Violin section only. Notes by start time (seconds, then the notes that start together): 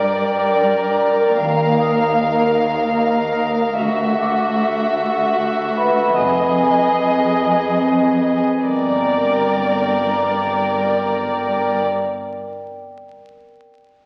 Already playing: A#4 D5
1.38 F5
3.80 F#4 E5
6.18 G#4 D#5
8.65 A#4 D5